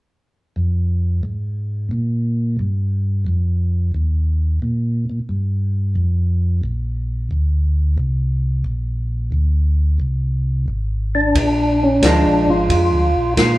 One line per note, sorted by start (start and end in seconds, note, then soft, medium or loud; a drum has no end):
0.56 1.22 F2 medium
1.23 1.89 G#2 medium
1.91 2.57 A#2 medium
2.59 3.24 G2 medium
3.27 3.92 F2 medium
3.94 4.60 D#2 medium
4.62 5.05 A#2 medium
5.09 5.20 A#2 soft
5.29 5.94 G2 medium
5.96 6.61 F2 medium
6.63 7.29 A#1 medium
7.31 7.97 D2 medium
7.98 8.64 C2 medium
8.64 9.31 A#1 medium
9.32 9.98 D2 medium
10.00 10.66 C2 medium
10.68 11.34 G#1 medium
11.15 11.84 D4 medium
11.35 12.01 A#1 medium
11.35 kick soft
11.35 ride medium
11.83 12.04 C#4 medium
12.02 12.24 D2 medium
12.02 13.08 F3 medium
12.02 13.09 G#3 medium
12.02 12.51 D4 medium
12.02 13.09 D4 medium
12.02 kick soft
12.02 snare medium
12.02 hi-hat pedal medium
12.02 ride medium
12.25 12.48 A#1 soft
12.46 12.68 G#1 medium
12.46 13.34 F4 medium
12.69 12.91 F2 medium
12.69 kick soft
12.69 ride medium
12.92 13.15 D2 medium
13.15 13.36 A#1 medium
13.37 13.58 A#2 medium
13.37 13.58 F4 medium
13.37 kick soft
13.37 snare medium
13.37 hi-hat pedal soft
13.37 ride medium